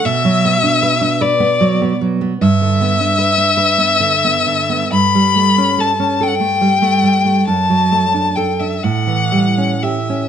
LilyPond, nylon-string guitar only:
\new Staff \with { instrumentName = "Nylon-string guitar" } { \time 6/8 \key a \mixolydian \tempo 4. = 47 b,16 fis16 b16 d'16 b'16 d'16 b'16 b16 fis16 b16 fis16 b16 | g,16 d16 b16 d'16 b'16 d'16 b'16 b16 d16 b16 d16 b16 | g,16 g16 a16 cis'16 a'16 cis'16 a'16 a16 g16 a16 g16 a16 | fis,16 fis16 a16 d'16 a'16 d'16 a,16 e16 g16 cis'16 g'16 cis'16 | }